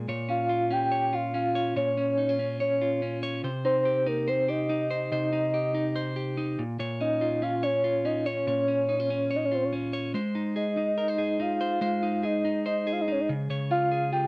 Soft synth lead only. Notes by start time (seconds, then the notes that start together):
0.30 F5
0.72 G5
1.14 F5
1.35 F5
1.77 C#5
2.61 C#5
3.65 C5
4.07 A#4
4.29 C5
4.49 D#5
5.11 D#5
7.01 D#5
7.43 F5
7.63 C#5
8.05 D#5
8.26 C#5
9.36 D#5
9.45 C#5
9.54 C5
9.64 C#5
10.56 D#5
11.41 F5
12.25 D#5
12.67 D#5
12.92 F5
13.01 D#5
13.12 C#5
13.21 D#5
13.71 F5
14.13 G5